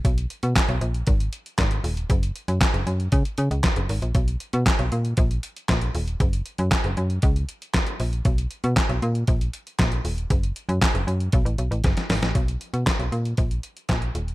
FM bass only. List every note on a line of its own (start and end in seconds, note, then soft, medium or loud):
0.05 0.26 B1 loud
0.43 0.54 B2 loud
0.69 0.80 B1 loud
0.81 1.03 A#1 loud
1.07 1.29 G#1 medium
1.58 1.80 G#1 loud
1.84 2.06 D#1 medium
2.10 2.31 F#1 loud
2.48 2.59 F#2 loud
2.74 2.85 F#1 loud
2.87 3.08 F#2 medium
3.12 3.23 C#3 medium
3.38 3.49 C#3 loud
3.51 3.62 C#2 medium
3.77 3.87 F#1 medium
3.89 4.00 G#1 loud
4.02 4.13 A#1 medium
4.15 4.37 B1 medium
4.54 4.64 B2 loud
4.79 4.90 B1 medium
4.92 5.14 A#2 medium
5.18 5.39 A#1 loud
5.69 5.91 A#1 loud
5.95 6.16 D#1 loud
6.20 6.42 F#1 loud
6.59 6.70 F#2 loud
6.84 6.95 F#1 loud
6.97 7.19 F#2 loud
7.23 7.45 C#2 loud
8.00 8.21 A#1 medium
8.25 8.47 B1 medium
8.64 8.75 B2 loud
8.89 9.00 B1 medium
9.02 9.24 A#2 loud
9.28 9.50 A#1 loud
9.79 10.01 A#1 loud
10.05 10.26 D#1 medium
10.30 10.52 F#1 loud
10.69 10.80 F#2 loud
10.94 11.05 F#1 medium
11.07 11.29 F#2 medium
11.33 11.44 B1 loud
11.45 11.56 A1 medium
11.59 11.69 B1 medium
11.71 11.82 A1 medium
11.84 11.95 F#1 loud
12.10 12.21 G#1 medium
12.22 12.33 A1 medium
12.35 12.57 B1 loud
12.74 12.85 B2 medium
12.99 13.10 B1 medium
13.12 13.34 A#2 medium
13.38 13.60 A#1 medium
13.89 14.11 A#1 loud
14.15 14.34 D#1 medium